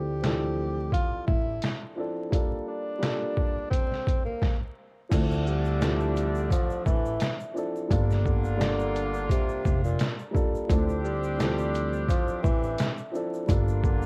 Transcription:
Already playing: upright bass D2, upright piano F3 C4 D4 E4 A4, tenor saxophone G4
0.21 upright piano E3 C4 D4 E4, snare, closed hi-hat
0.26 upright piano F3 A4
0.92 tenor saxophone F4, kick, closed hi-hat
1.27 upright bass A1, tenor saxophone E4, kick
1.62 snare, closed hi-hat
1.96 upright piano F3 C4 D4 E4
2.00 upright piano A4
2.30 upright piano G3 A#3 D4 F4, kick, closed hi-hat
2.35 upright piano A4
2.68 tenor saxophone D4
2.99 upright piano G3 A#3 D4 F4
3.03 upright piano A4, snare, closed hi-hat
3.37 kick
3.71 tenor saxophone C4, kick, closed hi-hat
3.92 snare
4.07 kick, closed hi-hat
4.25 tenor saxophone A#3
4.42 kick, snare
5.09 upright bass D2, horn section D3 A3 D4, upright piano F3 C4 D4 E4, kick, closed hi-hat, crash, shaker
5.14 upright piano A4
5.31 shaker
5.47 tenor saxophone G3, shaker
5.65 shaker
5.79 upright piano E3 C4 D4 E4, snare, closed hi-hat, shaker
5.84 upright piano F3 A4
6.00 shaker
6.16 closed hi-hat, shaker
6.35 shaker
6.50 tenor saxophone F3, kick, closed hi-hat, shaker
6.70 shaker
6.86 upright bass A1, tenor saxophone E3, kick, shaker
7.06 shaker
7.20 snare, closed hi-hat, shaker
7.40 shaker
7.54 upright piano F3 C4 D4 E4, shaker
7.58 upright piano A4
7.76 shaker
7.88 upright bass G1, upright piano G3 A#3 D4 F4, horn section A#3 D4 F4, kick, closed hi-hat, shaker
7.93 upright piano A4
8.10 snare, shaker
8.25 tenor saxophone D3, kick, shaker
8.44 shaker
8.57 upright piano G3 A#3 D4 F4
8.61 upright piano A4, snare, closed hi-hat, shaker
8.79 shaker
8.95 closed hi-hat, shaker
9.14 shaker
9.29 tenor saxophone C3, kick, closed hi-hat, shaker
9.49 shaker
9.65 upright bass F1, kick, shaker
9.84 tenor saxophone A#2, shaker
9.99 snare, closed hi-hat, shaker
10.19 shaker
10.31 upright piano G3 A#3 D4 F4, kick
10.35 upright piano A4, shaker
10.55 shaker
10.67 upright bass D2, upright piano F3 C4 D4 E4, horn section C4 D4 G4, kick, closed hi-hat, shaker
10.72 upright piano A4
10.89 shaker
11.04 tenor saxophone G3, shaker
11.23 shaker
11.38 upright piano E3 C4 D4 E4, snare, closed hi-hat, shaker
11.42 upright piano F3 A4
11.58 shaker
11.74 closed hi-hat, shaker
11.93 shaker
12.08 tenor saxophone F3, kick, closed hi-hat, shaker
12.28 shaker
12.43 upright bass A1, tenor saxophone E3, kick, shaker
12.46 shaker
12.63 shaker
12.78 snare, closed hi-hat, shaker
12.98 shaker
13.12 upright piano F3 C4 D4 E4, shaker
13.16 upright piano A4
13.33 shaker
13.46 upright bass G1, upright piano G3 A#3 D4 F4, horn section A#3 D4 F4, kick, closed hi-hat, shaker
13.51 upright piano A4
13.68 shaker
13.84 tenor saxophone D3, kick, shaker
14.02 shaker

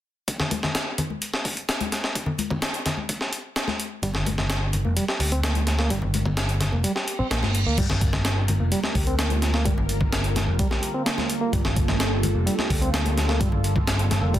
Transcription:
0.28 kick, closed hi-hat
0.40 snare, low conga
0.51 kick, closed hi-hat, high conga
0.63 snare, low conga
0.75 snare, closed hi-hat
0.98 closed hi-hat, low conga
1.10 high conga
1.22 closed hi-hat
1.34 snare
1.45 kick, open hi-hat
1.57 closed hi-hat
1.69 snare, closed hi-hat
1.80 closed hi-hat, high conga
1.92 snare, closed hi-hat
2.04 snare
2.15 kick, closed hi-hat
2.26 low conga
2.38 closed hi-hat, high conga
2.50 kick, low conga
2.62 snare, closed hi-hat
2.74 closed hi-hat
2.86 snare, closed hi-hat, low conga
2.97 high conga
3.09 kick, closed hi-hat
3.21 snare
3.33 closed hi-hat
3.56 snare, closed hi-hat
3.68 snare, high conga
3.80 closed hi-hat
4.03 picked electric bass G1, reed electric piano G3, kick, closed hi-hat
4.14 snare, low conga
4.26 kick, closed hi-hat, high conga
4.38 snare, low conga
4.50 snare, closed hi-hat
4.73 closed hi-hat, low conga
4.85 picked electric bass F1, reed electric piano A#3, high conga
4.97 reed electric piano G3, closed hi-hat
5.08 reed electric piano G4, snare
5.20 picked electric bass D2, kick, open hi-hat
5.32 reed electric piano C4, closed hi-hat
5.43 reed electric piano A#3, snare, closed hi-hat
5.55 closed hi-hat, high conga
5.67 snare, closed hi-hat
5.79 reed electric piano A#3, snare
5.90 picked electric bass G1, reed electric piano G3, kick, closed hi-hat
6.02 low conga
6.14 closed hi-hat, high conga
6.26 kick, low conga
6.37 snare, closed hi-hat
6.49 closed hi-hat
6.60 snare, closed hi-hat, low conga
6.72 picked electric bass F1, reed electric piano A#3, high conga
6.84 reed electric piano G3, closed hi-hat, reverse cymbal
6.96 reed electric piano G4, snare
7.08 closed hi-hat
7.19 reed electric piano C4, muted picked electric bass stroke
7.31 picked electric bass A#1, reed electric piano A#3, snare, closed hi-hat
7.43 picked electric bass G1, snare, high conga
7.55 closed hi-hat
7.66 picked electric bass D2, reed electric piano A#3
7.78 picked electric bass G1, analog synth pad D3 G3 A#3 F4 A#4, reed electric piano G3, kick, closed hi-hat, crash, high conga
7.90 snare, low conga
8.01 kick, closed hi-hat
8.13 snare, high conga, low conga
8.25 snare, closed hi-hat
8.48 closed hi-hat, high conga, low conga
8.60 picked electric bass F1, reed electric piano A#3
8.72 reed electric piano G3, closed hi-hat
8.83 reed electric piano G4, snare, high conga
8.95 picked electric bass D2, kick, open hi-hat
9.07 reed electric piano C4, closed hi-hat
9.19 reed electric piano A#3, snare, closed hi-hat
9.30 closed hi-hat, high conga
9.42 snare, closed hi-hat
9.54 reed electric piano A#3, snare
9.65 picked electric bass G1, reed electric piano G3, kick, closed hi-hat, high conga
9.78 low conga
9.89 closed hi-hat
10.00 kick, high conga, low conga
10.12 snare, closed hi-hat
10.24 closed hi-hat
10.36 snare, closed hi-hat, high conga, low conga
10.48 picked electric bass F1, reed electric piano A#3
10.59 reed electric piano G3, kick, closed hi-hat
10.71 reed electric piano G4, snare, high conga
10.83 closed hi-hat
10.94 reed electric piano C4
11.06 reed electric piano A#3, snare, closed hi-hat
11.18 snare, high conga
11.30 closed hi-hat
11.41 reed electric piano A#3
11.53 picked electric bass G1, reed electric piano G3, analog synth pad A4, kick, closed hi-hat, high conga
11.65 snare, low conga
11.76 kick, closed hi-hat
11.88 snare, high conga, low conga
12.00 snare, closed hi-hat
12.23 closed hi-hat, high conga, low conga
12.35 picked electric bass F1, reed electric piano A#3
12.47 reed electric piano G3, closed hi-hat
12.58 reed electric piano G4, snare, high conga
12.70 picked electric bass D2, kick, open hi-hat
12.82 reed electric piano C4, closed hi-hat
12.93 reed electric piano A#3, snare, closed hi-hat
13.06 closed hi-hat, high conga
13.17 snare, closed hi-hat
13.29 reed electric piano A#3, snare
13.40 picked electric bass G1, reed electric piano G3, kick, closed hi-hat, high conga
13.52 low conga
13.64 closed hi-hat
13.76 kick, high conga, low conga
13.87 snare, closed hi-hat
13.99 closed hi-hat
14.11 snare, closed hi-hat, high conga, low conga
14.23 picked electric bass F1, reed electric piano A#3
14.34 reed electric piano G3, kick, closed hi-hat

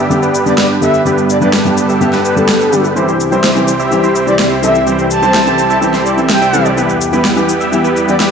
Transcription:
Already playing: analog synth pad G2 D3 B3 G4
0.00 supersaw synth G3 B3 D4 G4 E5
0.10 grand piano G2 D3 G3 B3 G4, cabasa
0.23 supersaw synth G3 B3 D4 G4 B4, cabasa
0.34 cabasa
0.46 grand piano G2 D3 G3 B3 G4, soft synth lead D5, cabasa
0.58 supersaw synth G3 B3 D4 G4 B4, soft synth lead D5, snare, cabasa
0.81 grand piano G2 D3 G3 B3 A4, soft synth lead E5, cabasa
0.94 cabasa
1.05 grand piano G2 D3 G3 B3 G4, supersaw synth G3 B3 D4 G4 B4, analog synth pad A4, cabasa
1.18 cabasa
1.30 soft synth lead D5, cabasa
1.41 grand piano G2 D3 G3 B3 B4, supersaw synth G3 B3 D4 G4 B4, soft synth lead D5, cabasa
1.53 snare, cabasa
1.65 grand piano G2 D3 G3 B3 G4, cabasa
1.77 cabasa
1.89 supersaw synth G3 B3 D4 G4 E5, cabasa
2.01 grand piano G2 D3 G3 B3 G4, cabasa
2.13 supersaw synth G3 B3 D4 G4 B4, snare, cabasa
2.25 soft synth lead B4, cabasa
2.36 grand piano G2 D3 G3 B3 G4, soft synth lead A4, cabasa
2.49 supersaw synth G3 B3 D4 G4 B4, snare, cabasa
2.61 cabasa
2.72 grand piano D3 G3 B3 A4, cabasa
2.85 cabasa
2.96 analog synth pad C2 C3 E4 G4, grand piano E3 G3 C4 G4, supersaw synth G3 C4 E4 G4 C5, cabasa
3.08 cabasa
3.20 cabasa
3.31 grand piano E3 G3 C4 C5, supersaw synth G3 C4 E4 G4 C5, cabasa
3.44 snare, cabasa
3.55 grand piano E3 G3 C4 G4, cabasa
3.68 cabasa
3.80 supersaw synth G3 C4 E4 G4 E5, cabasa
3.91 grand piano E3 G3 C4 G4, cabasa
4.03 supersaw synth G3 C4 E4 G4 C5, cabasa
4.15 cabasa
4.27 grand piano E3 G3 C4 G4, soft synth lead D5, cabasa
4.39 supersaw synth G3 C4 E4 G4 C5, soft synth lead D5, snare, cabasa
4.62 grand piano E3 G3 C4 A4, soft synth lead E5, cabasa
4.75 cabasa
4.86 grand piano E3 G3 C4 G4, supersaw synth G3 C4 E4 G4 C5, analog synth pad A4, cabasa
4.99 cabasa
5.11 soft synth lead A5, cabasa
5.22 grand piano E3 G3 C4 C5, supersaw synth G3 C4 E4 G4 C5, cabasa
5.34 snare, cabasa
5.46 grand piano E3 G3 C4 G4, cabasa
5.58 cabasa
5.70 supersaw synth G3 C4 E4 G4 E5, cabasa
5.81 grand piano E3 G3 C4 G4, cabasa
5.94 supersaw synth G3 C4 E4 G4 C5, snare, cabasa
6.06 supersaw synth G3 C4 E4 G4 D5, cabasa
6.17 grand piano E3 G3 C4 G4, supersaw synth G3 C4 E4 G4 E5, cabasa
6.30 soft synth lead G5, snare, cabasa
6.42 supersaw synth G3 C4 E4 G4 E5, cabasa
6.53 grand piano E3 G3 C4 A4, supersaw synth G3 C4 E4 G4 A4, cabasa
6.65 supersaw synth G3 C4 E4 G4 D5, cabasa
6.77 analog synth pad E2 E3 B3 G4, grand piano E3 G3 B3 G4, supersaw synth G3 B3 E4 G4 B4, cabasa
6.89 cabasa
7.01 cabasa
7.12 grand piano E3 G3 B3 B4, supersaw synth G3 B3 E4 G4 B4, cabasa
7.25 snare, cabasa
7.36 grand piano E3 G3 B3 G4, cabasa
7.49 cabasa
7.61 supersaw synth G3 B3 E4 G4 E5, cabasa
7.72 grand piano E3 G3 B3 G4, cabasa
7.84 supersaw synth G3 B3 E4 G4 B4, cabasa
7.96 cabasa
8.08 grand piano E3 G3 B3 G4, soft synth lead D5, cabasa
8.20 supersaw synth G3 B3 E4 G4 B4, soft synth lead D5, snare, cabasa

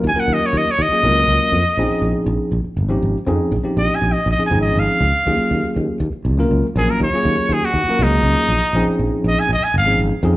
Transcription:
0.04 fretless electric bass D#2
0.08 muted trumpet G#5
0.15 tine electric piano F#3 A#3 C#4 F4 A#4, muted fretless electric bass stroke
0.20 muted trumpet F#5
0.28 fretless electric bass D#2
0.33 muted trumpet D#5
0.46 muted trumpet C#5
0.53 fretless electric bass D#2
0.57 muted trumpet D#5
0.71 muted trumpet C#5
0.79 fretless electric bass D#2, muted trumpet D#5
0.91 tine electric piano F#3 A#3 C#4 F4 G#4, muted fretless electric bass stroke
1.03 fretless electric bass C#2, tine electric piano F#3 A#3 C#4 F4 A#4
1.27 fretless electric bass C#2
1.40 muted fretless electric bass stroke
1.52 fretless electric bass F2
1.77 fretless electric bass A#1, tine electric piano F3 C4 C#4 D#4 G#4
1.91 muted fretless electric bass stroke
2.02 fretless electric bass A#1
2.26 fretless electric bass A#1
2.52 fretless electric bass A#1
2.64 muted fretless electric bass stroke
2.77 fretless electric bass G#1
2.89 tine electric piano F3 C4 C#4 D#4 G4
3.02 fretless electric bass G#1
3.15 muted fretless electric bass stroke
3.26 fretless electric bass F2, tine electric piano F3 C4 C#4 D#4 G#4
3.52 fretless electric bass A#1
3.63 tine electric piano F3 C4 C#4 D#4 G4, muted fretless electric bass stroke
3.77 fretless electric bass A#1, muted trumpet D#5
3.95 muted trumpet G#5
4.02 fretless electric bass A#1
4.12 muted trumpet D#5
4.26 fretless electric bass A#1
4.31 muted trumpet D#5
4.38 tine electric piano F3 C4 C#4 D#4 G#4, muted fretless electric bass stroke
4.46 muted trumpet G#5
4.51 fretless electric bass G#1, tine electric piano F3 C4 C#4 D#4 G#4
4.62 muted trumpet D#5
4.76 fretless electric bass G#1, muted trumpet F5
5.01 fretless electric bass C#2
5.26 fretless electric bass D#2, tine electric piano F#3 A#3 C#4 F4 G#4
5.40 muted fretless electric bass stroke
5.51 fretless electric bass D#2
5.76 fretless electric bass D#2
6.00 fretless electric bass D#2
6.13 muted fretless electric bass stroke
6.25 fretless electric bass C#2
6.38 tine electric piano F#3 A#3 C#4 F4 A#4
6.51 fretless electric bass C#2
6.63 muted fretless electric bass stroke
6.76 fretless electric bass A#1, tine electric piano F#3 A#3 C#4 F4 A#4, muted trumpet G#4
6.90 muted trumpet A#4
7.00 fretless electric bass D#2, muted trumpet C#5
7.13 tine electric piano F#3 A#3 C#4 F4 G#4, muted fretless electric bass stroke
7.25 fretless electric bass D#2
7.49 fretless electric bass D#2
7.53 muted trumpet G#4
7.65 muted trumpet F#4
7.74 fretless electric bass D#2
7.87 tine electric piano F#3 A#3 C#4 F4 A#4, muted fretless electric bass stroke
7.99 fretless electric bass C#2, tine electric piano F#3 A#3 C#4 F4 G#4, muted trumpet D#4
8.23 fretless electric bass C#2
8.36 muted fretless electric bass stroke
8.48 fretless electric bass A#1
8.73 fretless electric bass A#1, tine electric piano F3 C4 C#4 D#4 G#4
8.99 fretless electric bass A#1
9.24 fretless electric bass A#1, muted trumpet D#5
9.40 muted trumpet G#5
9.49 fretless electric bass A#1, muted trumpet D#5
9.61 muted trumpet G#5, muted fretless electric bass stroke
9.74 fretless electric bass G#1, muted trumpet F5
9.86 tine electric piano F3 C4 C#4 D#4 G#4
9.99 fretless electric bass G#1
10.12 muted fretless electric bass stroke
10.23 fretless electric bass F2, tine electric piano F3 C4 C#4 D#4 G#4

